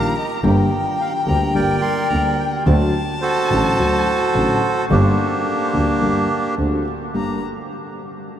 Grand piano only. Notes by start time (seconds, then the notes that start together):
Already playing: A#1 A#2 D#3 G3 A#3 F4
0.43 G1 G2 D3 G3 A#3 G4
1.26 D2 D3 G3 A#3 G4
1.55 G1 G2 D3 G3 A#3 G4
2.10 D2 D3 G3 A#3 G4
2.66 D2 D3 F#3 A3 F#4
3.50 A1 A2 D3 F#3 A3 F#4
3.79 D2 D3 F#3 A3 F#4
4.34 A1 A2 D3 F#3 A3 F#4
4.89 G1 G2 D3 G3 A#3 G4
5.73 D2 D3 G3 A#3 G4
6.01 G1 G2 D3 G3 A#3 G4
6.57 D2 D3 A3 C4 F#4
7.14 G2 A#3 D4 G4